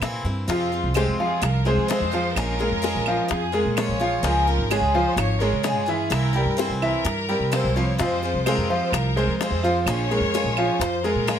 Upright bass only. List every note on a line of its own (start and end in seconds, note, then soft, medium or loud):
0.01 0.23 A#2 medium
0.24 0.46 G2 medium
0.48 0.82 F2 loud
0.84 1.06 C2 medium
1.07 1.29 F2 medium
1.42 1.76 C2 loud
1.76 2.02 F3 medium
2.00 2.34 F2 medium
2.36 2.69 A#1 loud
2.72 2.94 F2 medium
2.95 3.17 A#1 medium
3.31 3.64 F2 loud
3.65 3.90 A#2 medium
3.89 4.22 A#1 medium
4.23 4.57 C#2 loud
4.58 4.80 G#1 medium
4.81 5.04 C#2 medium
5.16 5.51 G#1 loud
5.53 5.76 C#3 medium
5.76 6.10 G2 medium
6.11 6.45 C2 loud
6.46 6.69 G2 medium
6.70 6.92 C2 medium
7.05 7.39 G2 loud
7.40 7.65 C3 medium
7.64 7.98 C2 medium
7.99 8.33 F2 loud
8.34 8.57 C2 medium
8.57 8.80 F2 medium
8.92 9.26 C2 loud
9.27 9.52 F3 medium
9.50 9.85 F2 medium
9.86 10.20 A#1 loud
10.20 10.43 F2 medium
10.44 10.67 A#1 medium
10.79 11.14 F2 loud
11.15 11.38 A#2 medium